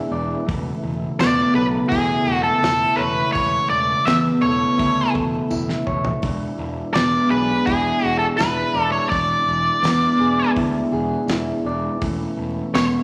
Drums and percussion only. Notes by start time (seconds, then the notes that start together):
0.49 kick, open hi-hat
1.19 snare, open hi-hat, tambourine
1.92 kick, open hi-hat
2.63 snare, open hi-hat, tambourine
3.35 kick, open hi-hat
4.07 snare, open hi-hat, tambourine
4.79 kick, open hi-hat
5.15 kick
5.51 kick, tambourine
5.69 snare
5.87 kick
6.05 floor tom
6.22 kick, open hi-hat
6.95 snare, open hi-hat, tambourine
7.67 kick, open hi-hat
8.39 snare, open hi-hat, tambourine
9.12 kick, open hi-hat
9.83 snare, open hi-hat, tambourine
10.56 kick, open hi-hat
11.28 snare, open hi-hat, tambourine
12.02 kick, open hi-hat
12.74 snare, open hi-hat, tambourine